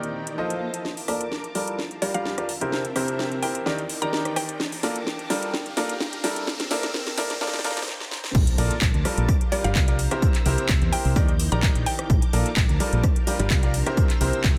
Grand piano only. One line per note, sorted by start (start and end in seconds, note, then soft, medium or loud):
0.00 0.35 D#3 medium
0.00 0.35 D#4 medium
0.00 0.35 G4 medium
0.00 0.35 A#4 medium
0.00 0.35 D5 medium
0.38 0.82 F3 medium
0.38 0.82 F4 medium
0.38 0.82 A4 medium
0.38 0.82 C5 medium
0.38 0.82 D#5 medium
1.08 1.22 A#3 medium
1.08 1.22 F4 medium
1.08 1.22 A4 medium
1.08 1.22 A#4 medium
1.08 1.22 D5 loud
1.55 1.77 G3 medium
1.55 1.77 F4 medium
1.55 1.77 A4 medium
1.55 1.77 A#4 medium
1.55 1.77 D5 medium
2.02 2.11 G3 medium
2.02 2.11 F4 medium
2.02 2.11 G4 medium
2.02 2.11 A#4 medium
2.02 2.11 D5 medium
2.14 2.34 G3 medium
2.14 2.34 F4 medium
2.14 2.34 G4 medium
2.14 2.34 A#4 medium
2.14 2.34 D5 loud
2.38 2.48 F4 medium
2.38 2.48 G4 medium
2.38 2.48 A#4 medium
2.38 2.48 D5 medium
2.61 2.83 C3 medium
2.61 2.83 E4 medium
2.61 2.83 G4 medium
2.61 2.83 A#4 medium
2.61 2.83 C5 loud
2.96 3.40 C3 medium
2.96 3.40 E4 medium
2.96 3.40 G4 medium
2.96 3.40 A#4 medium
2.96 3.40 C5 loud
3.43 3.63 E4 medium
3.43 3.63 G4 medium
3.43 3.63 A#4 medium
3.43 3.63 C5 medium
3.66 3.80 D#3 medium
3.66 3.80 D#4 medium
3.66 3.80 G4 medium
3.66 3.80 A#4 medium
3.66 3.80 D5 loud
4.02 4.58 D#3 medium
4.02 4.58 D#4 medium
4.02 4.58 G4 medium
4.02 4.58 A#4 medium
4.02 4.58 D5 medium
4.83 4.97 A#3 medium
4.83 4.97 F4 medium
4.83 4.97 A4 medium
4.83 4.97 A#4 medium
4.83 4.97 D5 medium
5.30 5.52 G3 medium
5.30 5.52 F4 medium
5.30 5.52 A4 medium
5.30 5.52 A#4 medium
5.30 5.52 D5 medium
5.77 5.91 A#3 medium
5.77 5.91 F4 medium
5.77 5.91 A4 medium
5.77 5.91 A#4 medium
5.77 5.91 D5 loud
6.24 6.45 G3 medium
6.24 6.45 E4 medium
6.24 6.45 A4 medium
6.24 6.45 A#4 medium
6.24 6.45 D5 medium
6.71 6.85 A#3 medium
6.71 6.85 E4 medium
6.71 6.85 A4 medium
6.71 6.85 A#4 medium
6.71 6.85 D5 loud
7.18 7.32 A#3 medium
7.18 7.32 E4 medium
7.18 7.32 A4 medium
7.18 7.32 A#4 medium
7.18 7.32 D5 loud
7.41 7.55 A#3 loud
7.41 7.55 F4 medium
7.41 7.55 A4 medium
7.41 7.55 A#4 medium
7.41 7.55 D5 loud
7.64 7.79 A#3 loud
7.64 7.78 F4 loud
7.64 7.79 A4 loud
7.64 7.79 A#4 medium
7.64 7.79 D5 loud
8.58 8.72 A#3 medium
8.58 8.72 F4 medium
8.58 8.72 A4 medium
8.58 8.72 A#4 medium
8.58 8.72 D5 loud
9.05 9.27 G3 medium
9.05 9.27 F4 medium
9.05 9.27 A4 medium
9.05 9.27 A#4 medium
9.05 9.27 D5 medium
9.52 9.61 G3 medium
9.52 9.61 F4 medium
9.52 9.61 G4 medium
9.52 9.61 A#4 medium
9.52 9.61 D5 medium
9.64 9.84 G3 medium
9.64 9.84 F4 medium
9.64 9.84 G4 medium
9.64 9.84 A#4 medium
9.64 9.84 D5 loud
9.88 9.98 F4 medium
9.88 9.98 G4 medium
9.88 9.98 A#4 medium
9.88 9.98 D5 medium
10.11 10.33 C3 medium
10.11 10.33 E4 medium
10.11 10.33 G4 medium
10.11 10.33 A#4 medium
10.11 10.33 C5 loud
10.46 10.90 C3 medium
10.46 10.90 E4 medium
10.46 10.90 G4 medium
10.46 10.90 A#4 medium
10.46 10.90 C5 loud
10.93 11.13 E4 medium
10.93 11.13 G4 medium
10.93 11.13 A#4 medium
10.93 11.13 C5 medium
11.16 11.30 D#3 medium
11.16 11.30 D#4 medium
11.16 11.30 G4 medium
11.16 11.30 A#4 medium
11.16 11.30 D5 loud
11.52 12.09 D#3 medium
11.52 12.09 D#4 medium
11.52 12.09 G4 medium
11.52 12.09 A#4 medium
11.52 12.09 D5 loud
12.33 12.47 A#3 loud
12.33 12.47 F4 medium
12.33 12.47 A4 medium
12.33 12.47 A#4 medium
12.33 12.47 D5 loud
12.80 13.02 G3 medium
12.80 13.02 F4 medium
12.80 13.02 A4 medium
12.80 13.02 A#4 medium
12.80 13.02 D5 medium
13.27 13.36 G3 medium
13.27 13.36 F4 medium
13.27 13.36 G4 medium
13.27 13.36 A#4 medium
13.27 13.36 D5 medium
13.39 13.59 G3 medium
13.39 13.59 F4 medium
13.39 13.59 G4 medium
13.39 13.59 A#4 medium
13.39 13.59 D5 loud
13.63 13.73 F4 medium
13.63 13.73 G4 medium
13.63 13.73 A#4 medium
13.63 13.73 D5 medium
13.86 14.08 C3 loud
13.86 14.08 E4 medium
13.86 14.08 G4 medium
13.86 14.08 A#4 medium
13.86 14.08 C5 loud
14.21 14.58 C3 medium
14.21 14.58 E4 medium
14.21 14.58 G4 medium
14.21 14.58 A#4 medium
14.21 14.58 C5 loud